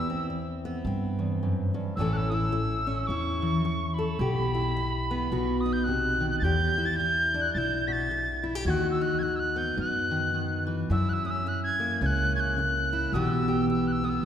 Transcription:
Already playing: E2 B3 E4 E6
0.10 C4
0.30 muted steel-string acoustic guitar stroke
0.65 B3
0.85 G2 C4
1.19 E2
1.43 F#2
1.74 G2
1.96 A1 A2 E3 E6
2.00 C#4 E4 A4
2.13 F#6
2.17 E6
2.30 E4 D#6
2.34 E6
2.52 muted steel-string acoustic guitar stroke
2.87 C#4
3.07 E2 E4 C#6
3.42 E3
3.65 muted steel-string acoustic guitar stroke
3.94 B5
3.99 A4
4.19 B1 B2 G4
4.55 E4
4.77 muted steel-string acoustic guitar stroke
5.11 B3
5.31 B1 B2 F#4
5.60 D#6
5.66 D#4
5.73 G6
5.84 C3 F#6
6.20 D#3
6.29 F#6
6.39 E2 G6 A6
6.44 E2 G4
6.78 E4
6.86 A6
6.96 G6, muted steel-string acoustic guitar stroke
7.34 D4
7.41 F#6
7.54 B1 E4 A6
7.58 G6
7.87 B2 B6
7.92 A6
8.11 muted steel-string acoustic guitar stroke
8.44 E4
8.55 G4
8.65 D#2 D#3 F#4 G#6
8.70 F#6
8.91 E6
9.01 D#4 F#6
9.19 F#6 G#6
9.23 muted steel-string acoustic guitar stroke
9.36 E6 F#6
9.56 B3 G6
9.77 F#2 D#4 F#6
10.11 D#3
10.34 D#3
10.67 E3
10.90 F#2 E4 E6
11.09 F#6
11.13 E6
11.25 C#4 D#6
11.30 E6
11.46 F#6, muted steel-string acoustic guitar stroke
11.64 G#6
11.80 A#3
12.01 C#2 C#4 G#6
12.06 F#6
12.36 C#3 G#6
12.40 F#6
12.58 muted steel-string acoustic guitar stroke
12.93 E4
13.12 B1 B2 E3 B3 G4 E6
13.48 G4
13.70 E6, muted steel-string acoustic guitar stroke
13.88 F#6
13.92 E6
14.04 B3 D#6
14.09 E6

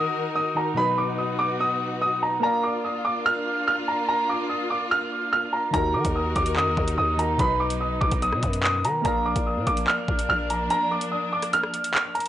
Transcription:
Already playing: D#3 D#4 F#4 A#4 D#6
0.36 D#6
0.55 D#3 D#4 F#4 A#4 A#5
0.74 B2 F#3 B3 D#4 F#4 B5
0.80 B4
0.98 D6
1.18 D#6
1.39 D6
1.60 D#6
2.02 D#6
2.23 A#5
2.40 A#3 D4 F4 A#4 D5 A#5
2.46 F5
2.63 D6
2.84 D#6
3.05 D6
3.26 F6
3.68 F6
3.88 A#5
4.09 A#5
4.29 D6
4.49 D#6
4.70 D6
4.91 F6
5.33 F6
5.53 A#5
5.71 D#2 D#3 D#4 F#4 A#4 A#5, kick, closed hi-hat
5.76 A#4
5.94 D#3 D6
6.05 D#2, kick, closed hi-hat
6.15 D#6
6.36 D#2 D6, kick, closed hi-hat
6.46 closed hi-hat
6.56 F#2 D#6, clap
6.67 D#2
6.77 D#2, kick
6.88 closed hi-hat
6.98 D#2 D#6
7.17 D#3 D#4 F#4 A#4 A#5, closed hi-hat
7.36 B1 B2 F#3 B3 D#4 B5, kick, closed hi-hat
7.42 B4
7.60 D6
7.70 closed hi-hat
7.80 D#6
8.01 B1 D6, kick
8.11 B1, kick, closed hi-hat
8.22 D#6, closed hi-hat
8.32 B2, cross-stick
8.43 F#2, kick, closed hi-hat
8.53 closed hi-hat
8.63 D#6, clap
8.84 D#3 A#5, closed hi-hat
9.02 A#1 F3 A#3 D4 A#4 D5 A#5, kick, closed hi-hat
9.08 F5
9.26 D6
9.36 A#1, kick, closed hi-hat
9.46 D#6
9.57 A#2
9.67 A#1 D6, kick, closed hi-hat
9.77 closed hi-hat
9.88 F6, clap
10.08 A#1, kick
10.19 closed hi-hat
10.29 A#1 F6
10.50 A#5, closed hi-hat
10.70 A#5, closed hi-hat
10.91 D6
11.01 closed hi-hat
11.12 D#6
11.33 D6
11.43 cross-stick, closed hi-hat
11.53 F6, closed hi-hat
11.63 cross-stick
11.74 closed hi-hat
11.84 closed hi-hat
11.94 F6, clap
12.15 A#5, closed hi-hat
12.20 closed hi-hat

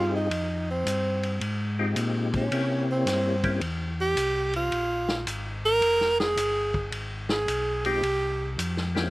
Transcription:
Already playing: G2 C4 D#4 F4 G4 G#4
0.16 D#4
0.30 F2, ride
0.71 C4
0.86 G2, hi-hat pedal, ride
1.23 ride
1.41 G#2, ride
1.79 G#3 C4 D#4 F4 G4
1.96 A#2, hi-hat pedal, ride
2.34 C#4, kick, ride
2.51 C3 A#3 C4 E4 G4 C#5, ride
2.92 C4
3.06 G2, snare, hi-hat pedal, ride
3.44 A#3 C4 C#4 E4 G4, kick, ride
3.61 E2, ride
4.01 G4
4.16 C2, hi-hat pedal, ride
4.53 F4, ride
4.72 A#1, ride
5.08 snare
5.26 G#1, hi-hat pedal, ride
5.66 A#4
5.82 F1, ride
6.01 snare
6.20 G#4, snare
6.37 G1, hi-hat pedal, ride
6.74 kick
6.92 G#1, ride
7.29 G#4, snare
7.48 B1, hi-hat pedal, ride
7.85 G#3 C4 D#4 F4 G4, ride
8.02 C2, ride
8.58 F2, hi-hat pedal, ride
8.77 snare
8.95 A#3 C4 C#4 E4 G4, snare

